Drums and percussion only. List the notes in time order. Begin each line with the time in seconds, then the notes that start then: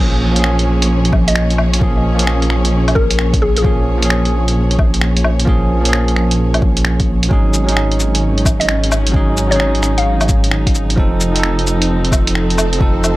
0.36 closed hi-hat
0.44 finger snap
0.59 closed hi-hat
0.82 closed hi-hat
1.05 closed hi-hat
1.13 kick, low woodblock
1.28 closed hi-hat
1.36 finger snap
1.50 closed hi-hat
1.58 low woodblock
1.74 closed hi-hat
1.81 kick
2.19 closed hi-hat
2.27 finger snap
2.42 closed hi-hat
2.50 finger snap
2.65 closed hi-hat
2.88 closed hi-hat, low woodblock
2.96 kick
3.11 closed hi-hat
3.19 finger snap
3.33 kick, closed hi-hat
3.57 closed hi-hat
3.64 kick
4.02 closed hi-hat
4.10 finger snap
4.25 closed hi-hat
4.48 closed hi-hat
4.71 closed hi-hat
4.79 kick, low woodblock
4.94 closed hi-hat
5.01 finger snap
5.17 closed hi-hat
5.24 low woodblock
5.40 closed hi-hat
5.47 kick
5.85 closed hi-hat
5.93 finger snap
6.08 closed hi-hat
6.16 finger snap
6.31 closed hi-hat
6.54 closed hi-hat, low woodblock
6.62 kick
6.77 closed hi-hat
6.85 finger snap
7.00 kick, closed hi-hat
7.23 closed hi-hat
7.31 kick
7.54 cabasa
7.69 closed hi-hat
7.77 finger snap
7.92 closed hi-hat
8.00 cabasa
8.15 closed hi-hat
8.38 closed hi-hat
8.45 kick, cabasa, low woodblock
8.61 closed hi-hat
8.69 finger snap
8.84 closed hi-hat
8.92 cabasa, low woodblock
9.07 closed hi-hat
9.14 kick
9.37 cabasa
9.52 closed hi-hat
9.60 finger snap
9.75 closed hi-hat
9.83 finger snap, cabasa
9.98 closed hi-hat
10.21 closed hi-hat, cabasa, low woodblock
10.29 kick, cabasa
10.44 closed hi-hat
10.51 finger snap
10.67 kick, closed hi-hat
10.75 cabasa
10.90 closed hi-hat
10.98 kick
11.21 cabasa
11.36 closed hi-hat
11.43 finger snap
11.59 closed hi-hat
11.67 cabasa
11.82 closed hi-hat
12.05 closed hi-hat
12.12 kick, cabasa, low woodblock
12.27 closed hi-hat
12.35 finger snap
12.50 closed hi-hat
12.58 cabasa, low woodblock
12.73 closed hi-hat
12.81 kick
13.04 cabasa, low woodblock